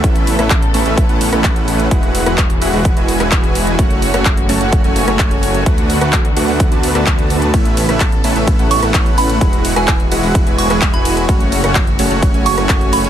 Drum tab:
RD |----------------|----------------|----------------|----------------|
HH |xxoxxxoxxxoxxxox|xxoxxxooxxoxxxox|xxoxxxoxxxoxxxox|xxoxxxooxxoxxxox|
CP |----x-------x---|----x------xx---|----x-------x---|----x------xx---|
SD |---r-------r----|---r-------r----|---r-------r----|---r-------r----|
BD |o---o---o---o---|o---o---o---o---|o---o---o---o---|o---o---o---o---|

RD |x-x---x-x-x-x-x-|x-x-x-x-x-x---x-|x-x-x-x-x-x-x-x-|
HH |xxoxxxoxxxoxxxox|xxoxxxooxxoxxxox|xxoxxxoxxxoxxxox|
CP |----x-------x---|----x------xx---|----x-------x---|
SD |---r-------r----|---r-------r----|---r-------r----|
BD |o---o---o---o---|o---o---o---o---|o---o---o---o---|